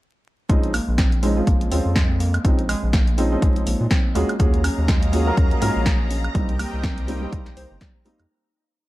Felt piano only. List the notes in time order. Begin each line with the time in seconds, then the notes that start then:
0.49 F3 G#3 C4 C#4 D#4
1.22 F3 G#3 C4 C#4 D#4
1.36 F3 G#3 C4 C#4 F4
1.71 F3 G#3 C4 C#4 F4
2.44 F3 G#3 C4 C#4 D#4
3.18 F3 G#3 C4 C#4 D#4
3.31 F3 G#3 C4 C#4 D#4
4.15 A#3 C#4 F4 F#4 G#4
4.39 A#3 C#4 F4 F#4 G#4
5.13 A#3 C#4 F4 F#4 G#4
5.27 A#3 C#4 F4 F#4 A#4
5.61 A#3 C#4 F4 F#4 A#4
6.35 G3 A#3 C4 D#4
7.08 G3 A#3 C4 D#4
7.21 G3 A#3 C4 D#4
8.05 G3 A#3 C4 D#4